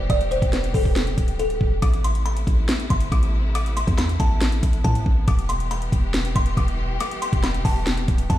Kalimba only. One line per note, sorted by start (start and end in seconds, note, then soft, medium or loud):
0.10 0.27 D5 loud
0.31 0.49 C5 medium
0.53 0.70 B4 medium
0.74 1.35 A4 medium
1.39 1.80 A4 medium
1.82 2.00 D6 loud
2.04 2.22 C6 medium
2.26 2.86 B5 medium
2.90 3.08 C6 medium
3.12 3.53 D6 medium
3.55 3.73 D6 loud
3.77 3.94 C6 medium
3.98 4.16 B5 medium
4.20 4.81 A5 medium
4.84 5.25 A5 medium
5.28 5.45 D6 loud
5.49 5.67 C6 medium
5.71 6.32 B5 medium
6.36 6.53 C6 medium
6.57 6.98 D6 medium
7.01 7.18 D6 loud
7.22 7.39 C6 medium
7.44 7.61 B5 medium
7.65 8.26 A5 medium
8.30 8.38 A5 medium